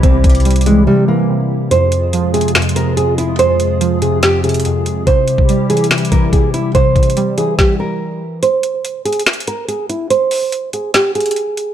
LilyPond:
<<
  \new Staff \with { instrumentName = "Nylon-string guitar" } { \time 4/4 \key f \minor \tempo 4 = 143 c'4. aes8 g8 bes4. | c''4. aes'8 r8 bes'8 aes'8 e'8 | c''4. aes'8 g'8 aes'4. | c''4. aes'8 r8 bes'8 aes'8 e'8 |
c''4. aes'8 g'8 bes'4. | c''4. aes'8 r8 bes'8 aes'8 e'8 | c''4. aes'8 g'8 aes'4. | }
  \new Staff \with { instrumentName = "Analog synth pad" } { \time 4/4 \key f \minor << { <g e' g'>1 | <aes f' aes'>1~ | <aes f' aes'>1 | <g e' g'>1~ |
<g e' g'>2 r2 | r1 | r1 | } \\ { c1 | c1~ | c1~ | c1~ |
c2 r2 | r1 | r1 | } >> }
  \new Staff \with { instrumentName = "Synth keys" } { \clef bass \time 4/4 \key f \minor <c e>4 g8 e8 c8 e8 c4 | f,4 f8 c8 f,8 c8 f,4 | f,4 f8 c8 f,8 c8 f,4 | c4 g8 e8 c8 e8 c4 |
c4 g8 e2~ e8 | r1 | r1 | }
  \new Staff \with { instrumentName = "808-style bass" } { \clef bass \time 4/4 \key f \minor c,8 c,4. r2 | r1 | r1 | r1 |
r1 | r1 | r1 | }
  \new DrumStaff \with { instrumentName = "Drums" } \drummode { \time 4/4 <hh bd>8 <hh hho bd>32 hh32 hh32 hh32 hh32 hh32 hh32 hh32 hh8 r4 r4 | hh8 hh8 \tuplet 3/2 { hh16 r16 r16 hh16 hh16 hh16 <hh sn>16 hh16 hh16 hh16 r16 r16 } hh8 hh8 | hh8 hh8 hh8 hh8 <hh sn>8 hh32 hh32 hh32 hh32 hh8 hh8 | <hh bd>8 hh16 bd16 \tuplet 3/2 { hh16 r16 r16 hh16 hh16 hh16 <hh sn>16 hh16 hh16 <hh bd>16 r16 r16 } <hh bd>8 hh8 |
\tuplet 3/2 { <hh bd>16 r16 r16 <hh bd>16 hh16 hh16 } hh8 hh8 <bd sn>4 r4 | hh8 hh8 \tuplet 3/2 { hh16 r16 r16 hh16 hh16 hh16 <hh sn>16 hh16 hh16 hh16 r16 r16 } hh8 hh8 | hh8 hho8 hh8 hh8 <hh sn>8 hh32 hh32 hh32 hh32 hh8 hh8 | }
>>